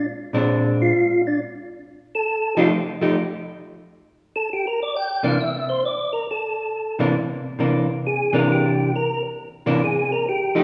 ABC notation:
X:1
M:4/4
L:1/8
Q:"Swing" 1/4=135
K:Cdor
V:1 name="Tonewheel organ"
z3 F2 D z2 | z A2 F z4 | z3 A (3G B d g f | =e c d B A3 z |
z4 _A B G2 | B z3 _A B G2 |]
V:2 name="Hollow-body jazz guitar"
z [B,,_A,CD]3 z4 | z3 [F,A,EG] z [F,A,EG] z2 | z6 z [C,=E,B,D] | z6 z [C,=E,B,D] |
z2 [C,=E,B,D] z2 [C,E,B,D]3 | z3 [C,=E,B,D] z3 [F,A,_EG] |]